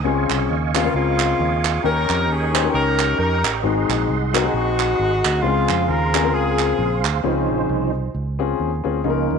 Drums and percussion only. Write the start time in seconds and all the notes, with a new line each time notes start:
0.30 clap
0.75 clap
1.20 clap
1.65 clap
2.10 clap
2.55 clap
2.99 clap
3.45 clap
3.90 clap
4.35 clap
4.80 clap
5.25 clap
5.69 clap
6.15 clap
6.59 clap
7.05 clap